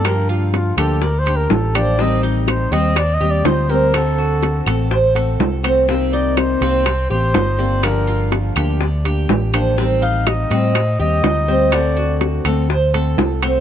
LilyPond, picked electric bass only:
\new Staff \with { instrumentName = "Picked electric bass" } { \clef bass \time 4/4 \key g \minor \tempo 4 = 123 g,4. d,4. a,,4~ | a,,4. ees,4 ees,8 d,4~ | d,4. a,,4. c,4~ | c,4. c,4 a,,8 g,,4~ |
g,,4. d,4. a,,4~ | a,,4. a,4 ees,8 d,4~ | d,4. d,4. c,4 | }